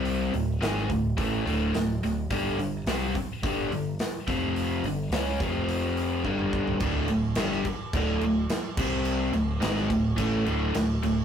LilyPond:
<<
  \new Staff \with { instrumentName = "Overdriven electric guitar" } { \clef bass \time 4/4 \key d \minor \tempo 4 = 106 <c g c'>8 <d, a,>8 <gis, ees gis>8 <d, a,>8 <a, e a>8 <d, a, d>8 <d, a,>8 <d, a,>8 | <g, d g>8 <g, d>8 <c g c'>8 r8 <g, d g>8 <g, d>8 r8 <f, c f>8~ | <f, c f>8 <g, d>8 <cis gis cis'>8 <f, c f>4. <g, d g>4 | <d, a, d>8 <d, a,>8 <g, d g>8 r8 <d, a, d>8 <d, a,>8 r8 <c g c'>8~ |
<c g c'>8 <d, a,>8 <gis, ees gis>8 <d, a,>8 <a, e a>8 <d, a, d>8 <d, a,>8 <d, a,>8 | }
  \new Staff \with { instrumentName = "Picked electric bass" } { \clef bass \time 4/4 \key d \minor c,8 d,,8 gis,,8 d,,8 a,,8 d,,8 d,,8 d,,8 | g,,8 g,,8 c,8 r8 g,,8 g,,8 r8 f,,8~ | f,,8 g,,8 cis,8 f,,4. g,,4 | d,,8 d,,8 g,,8 r8 d,,8 d,,8 r8 c,8~ |
c,8 d,,8 gis,,8 d,,8 a,,8 d,,8 d,,8 d,,8 | }
  \new DrumStaff \with { instrumentName = "Drums" } \drummode { \time 4/4 hho8 hho8 <hho sn>16 sn16 <hho bd>8 <hho bd>8 hho8 <hho sn>8 <hho sn>8 | <hho bd>8 hho8 <hho sn>8 <hho bd>8 <hho bd>8 hho8 <hho sn>8 <hho bd sn>8 | hho8 hho8 <hho sn>8 <hho bd>8 hho8 hho8 bd16 toml16 bd16 tomfh16 | <cymc bd>8 cymc8 <cymc sn>16 sn16 <cymc bd>8 <cymc bd>8 cymc8 <cymc sn>8 <cymc bd>8 |
cymc8 cymc8 <cymc sn>16 sn16 <cymc bd>8 <cymc bd>8 cymc8 <cymc sn>8 <cymc sn>8 | }
>>